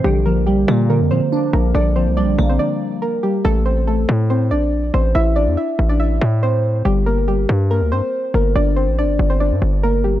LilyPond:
<<
  \new Staff \with { instrumentName = "Synth pluck" } { \time 4/4 \key a \phrygian \tempo 4 = 141 <g g'>8 <bes bes'>8 <g g'>4 <bes bes'>8 <c' c''>4 <bes bes'>8 | <d' d''>8 <c' c''>8 <d' d''>8. <c' c''>16 <d' d''>4 <bes bes'>8 <g g'>8 | <a a'>8 <c' c''>8 <a a'>4 <c' c''>8 <d' d''>4 <c' c''>8 | <e' e''>8 <d' d''>8 <e' e''>8. <d' d''>16 <e' e''>4 <c' c''>4 |
<g g'>8 <bes bes'>8 <g g'>4 <bes bes'>8 <c' c''>4 <bes bes'>8 | <d' d''>8 <c' c''>8 <d' d''>8. <c' c''>16 <d' d''>4 <bes bes'>8 <g g'>8 | }
  \new Staff \with { instrumentName = "Synth keys" } { \clef bass \time 4/4 \key a \phrygian d8 f8 g8 bes8 d8 f8 d'4 | d8 f8 g8 bes2~ bes8 | r1 | r1 |
r1 | r1 | }
  \new Staff \with { instrumentName = "808-style bass" } { \clef bass \time 4/4 \key a \phrygian bes,,4. bes,8. f,16 bes,16 r8. bes,,8 | bes,,8. c,16. bes,,16. bes,,8 r2 | a,,4. a,4 bes,,4 a,,8 | a,,8. e,16 r8 a,,4 a,4. |
g,,4. g,8. d,16 g,16 r8. g,,8 | g,,8. a,,16. g,,16. g,,8. g,16 g,,4. | }
>>